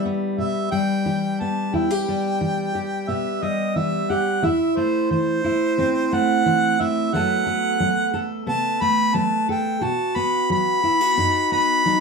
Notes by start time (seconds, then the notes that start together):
Already playing: E3 G3 G4 E5
0.05 B3
0.38 B2 E5
0.71 G3 G5
1.06 E3 G4
1.40 B3 A5
1.73 E2 E4 G5
1.91 G4
2.08 G3
2.41 E3
2.75 G4
3.08 B2 B3 E5
3.42 G3 D#5
3.76 E3 B3 E5
4.10 G4 F#5
4.42 E2 E4 E5
4.77 A3 C5
5.11 E3 C5
5.44 E4
5.78 E2 C4
6.12 A3 F#5
6.46 E3 C4
6.80 E4 E5
7.13 F#2 F#3 A3 B3 A4 F#5
7.46 A3
7.80 F#3
8.14 A4
8.47 C3 B3 A5
8.81 A3 B5
9.14 F#3 B3 A5
9.49 A4 G5
9.81 B2 F#4 A5
10.16 B3 B5
10.50 F#3 B5
10.83 E4
11.01 F#4
11.17 F#2 D#4
11.52 B3 B5
11.86 F#3 D#4